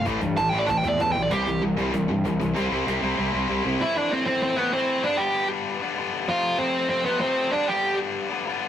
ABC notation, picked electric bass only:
X:1
M:4/4
L:1/8
Q:1/4=193
K:Am
V:1 name="Picked electric bass" clef=bass
A,,, G,, A,,, A,,, A,,, E,, E,, B,,, | C,, C,, C,, C,, C,, G,, C,, C,, | C,, C,, C,, C,, C,, C,, C,, C,, | z8 |
z8 | z8 | z8 |]